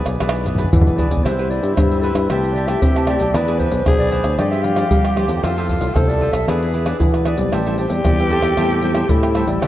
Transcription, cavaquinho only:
0.06 G#4 B4 D5
0.21 E4 G#4 B4 D5
0.46 E4 G#4 B4 D5
0.58 E4 G#4 B4 D5
0.87 G#4 B4 D5
0.98 E4 G#4 B4 D5
1.11 G#4 B4 D5
1.25 E4 B4 C5 E5
1.39 E4 B4 C5 E5
1.51 E4 B4 C5 E5
1.91 B4 C5 E5
2.03 E4 B4 C5 E5
2.15 E5
2.30 G4 C5 E5 A5
2.56 G4 C5 E5 A5
2.69 G4 C5 E5 A5
2.96 C5 E5 A5
3.08 G4 C5 E5 A5
3.20 C5 E5 A5
3.35 E4 G#4 B4 D5
3.48 E4 G#4 B4 D5
3.60 E4 G#4 D5
4.00 G#4 B4 D5
4.12 E4 G#4 B4 D5
4.24 G#4 B4 D5
4.39 F4 G4 C5 D5
4.65 F4 G4 C5 D5
4.77 F4 G4 C5 D5
5.05 G4 C5 D5
5.16 F4 G4 C5 D5
5.29 G4 C5 D5
5.43 F4 A4 C5 E5
5.58 F4 A4 C5 E5
5.70 F4 A4 C5 E5
6.10 A4 C5 E5
6.21 F4 A4 C5 E5
6.34 A4 C5 E5
6.48 E4 G#4 B4 D5
6.74 E4 G#4 B4 D5
6.86 E4 G#4 B4 D5
7.14 G#4 B4 D5
7.26 E4 G#4 B4 D5
7.38 G#4 B4 D5
7.52 A4 C5 E5 G5
7.66 A4 C5 E5 G5
7.78 A4 C5 E5 G5
8.18 C5 E5 G5
8.30 A4 C5 E5 G5
8.43 C5 E5 G5
8.57 A4 C5 E5 G5
8.83 A4 C5 E5 G5
8.95 A4 C5 E5 G5
9.23 C5 E5 G5
9.35 A4 C5 E5 G5
9.47 E5 G5
9.62 E4 B4 C5 E5

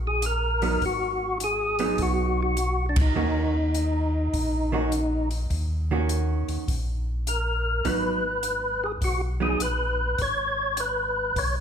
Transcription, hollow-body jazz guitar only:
0.62 F#3 B3 D#4
1.80 F#3 B3 D#4
3.16 D#3 A#3 C#4 F#4
4.72 D#3 A#3 C#4 F#4
5.91 D#3 A#3 C#4 F#4
7.85 F#3 B3 D#4
9.40 F#3 B3 D#4

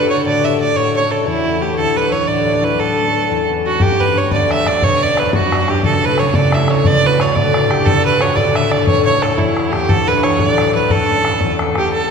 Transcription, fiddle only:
0.10 C#5
0.26 D5
0.45 E5
0.60 D5
0.76 C#5
0.96 C#5
1.11 A4
1.27 E4
1.62 G4
1.78 A4
1.96 B4
2.12 C#5
2.27 D5
2.64 B4
2.80 A4
3.66 F#4
3.82 G4
4.00 B4
4.17 C#5
4.33 D5
4.51 E5
4.67 D5
4.83 C#5
5.03 D5
5.19 B4
5.34 F#4
5.70 G4
5.85 A4
6.05 B4
6.19 C#5
6.35 D5
6.54 E5
6.70 C#5
6.86 D5
7.06 B4
7.21 C#5
7.35 D5
7.70 G4
7.85 A4
8.05 B4
8.21 C#5
8.36 D5
8.56 E5
8.71 D5
8.86 C#5
9.05 C#5
9.22 A4
9.37 E4
9.72 G4
9.89 A4
10.07 B4
10.23 C#5
10.39 D5
10.75 B4
10.91 A4
11.78 G4
11.92 A4

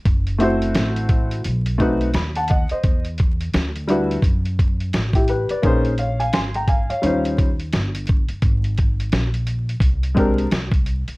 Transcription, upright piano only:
0.38 A3 C4 E4 F#4 C5
1.78 A3 C4 D#4 F#4 B4
2.15 B5
2.36 F#5 A5
2.50 D#5 F#5
2.71 C5 D#5
3.87 G3 D4 E4 F#4 B4
5.15 E4 G4
5.29 G4 B4
5.50 B4 D5
5.62 A#3 C#4 D#4 G#4 C5
5.99 C#5 F5
6.20 F5 G#5
6.34 G#5 C6
6.55 G5 A#5
6.68 F5 G#5
6.90 C#5 F5
7.02 G3 C#4 D#4 F4 C5
10.15 G#3 C4 D4 G4 A#4

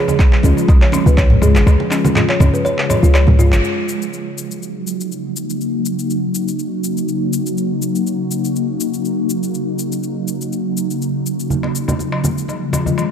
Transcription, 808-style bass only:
0.44 C#2
1.06 C#2
1.42 C#2
1.55 G#1
1.67 C#2
2.40 C#2
3.03 C#2
3.28 C#2
3.52 G#1

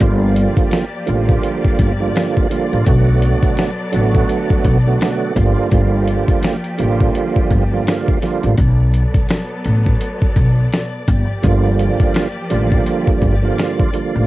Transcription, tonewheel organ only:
0.00 D3 F3 G3 A#3 F4
1.06 D3 F3 G3 A#3 F4
1.99 D3 F3 G3 A#3 F4
2.50 D3 F3 G3 A#3 F4
2.85 D3 F#3 A3 B3 F#4
3.92 D3 F#3 A3 B3 F#4
4.85 D3 F#3 A3 B3 F#4
5.34 D3 F3 G3 A#3 F4
5.71 D3 F3 G3 A#3 F4
6.78 D3 F3 G3 A#3 F4
7.71 D3 F3 G3 A#3 F4
8.22 D3 F3 G3 A#3 F4
11.42 D3 F3 G3 A#3 F4
12.50 D3 F3 G3 A#3 F4
13.42 D3 F3 G3 A#3 F4
13.93 D3 F3 G3 A#3 F4

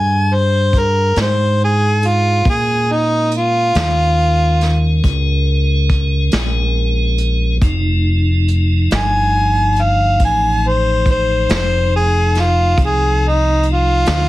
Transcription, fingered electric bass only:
Already playing: G2
1.16 G#2
2.46 A#2
3.75 D#2
5.04 C#2
6.33 A#1
7.62 F1
8.92 G1
10.21 A1
11.49 F1
12.78 C2
14.08 D2

